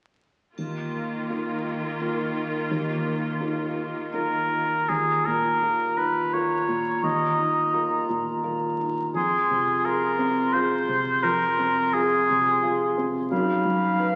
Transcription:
0.57 felt piano D#2, cello section D#3, viola section A#3 F4, triangle
1.30 felt piano D#4 F4 A#4
2.01 felt piano D#4 F4 A#4
2.71 felt piano D#2
3.40 felt piano D#4 F4 A#4
4.13 felt piano D#4 F4 A#4, oboe A#4
4.88 felt piano D#2, clarinet F4, oboe G#4, flute A#5
5.25 felt piano A#2, oboe A#4
5.62 felt piano F4 A#4
5.97 felt piano D#4, oboe B4
6.33 felt piano F4 A#4, oboe C#5
6.68 felt piano A#2
7.03 felt piano D#2, oboe D#5
7.38 felt piano D#4
7.74 felt piano F4 A#4
8.09 felt piano A#2
8.43 felt piano F4 A#4
8.80 felt piano D#4
9.14 felt piano F2, clarinet F4, oboe G#4, flute C6
9.50 felt piano C3
9.85 felt piano F4 G#4, oboe A#4
10.19 felt piano C4
10.53 felt piano F4 G#4, oboe C5
10.88 felt piano C3
11.23 felt piano F2, oboe A#4
11.59 felt piano C4
11.93 felt piano F4 G#4, oboe G#4
12.29 felt piano C3
12.63 felt piano F4 G#4
12.98 felt piano C4
13.31 felt piano F#2, clarinet D#4, oboe F5, flute B5
13.65 felt piano F#3
14.00 felt piano D#4 B4

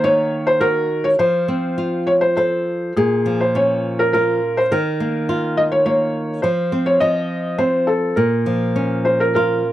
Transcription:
Already playing: nylon-string guitar D#3 A#3
0.04 nylon-string guitar D#4, felt piano C#5
0.47 felt piano C5
0.61 nylon-string guitar F#4, felt piano A#4
1.04 felt piano C#5
1.19 nylon-string guitar F3, felt piano C5
1.48 nylon-string guitar C4
1.78 nylon-string guitar F4
2.07 felt piano C#5
2.21 felt piano C5
2.37 nylon-string guitar A4, felt piano C5
2.96 nylon-string guitar A#2, felt piano G#4
3.26 nylon-string guitar F3
3.41 felt piano C5
3.55 nylon-string guitar C#4, felt piano C#5
3.99 felt piano A#4
4.13 nylon-string guitar F4, felt piano A#4
4.57 felt piano C5
4.72 nylon-string guitar D#3, felt piano A#4
5.00 nylon-string guitar A#3
5.29 nylon-string guitar F4
5.57 felt piano D#5
5.72 felt piano C#5
5.86 nylon-string guitar A#3, felt piano C#5
6.42 nylon-string guitar F3, felt piano C5
6.72 nylon-string guitar C4
6.86 felt piano C#5
7.00 nylon-string guitar F3, felt piano D#5
7.58 nylon-string guitar C4, felt piano C5
7.87 felt piano A4
8.16 nylon-string guitar A#2, felt piano A#4
8.46 nylon-string guitar F3
8.76 nylon-string guitar C#4
9.05 felt piano C5
9.20 felt piano A#4
9.35 nylon-string guitar F4, felt piano A#4

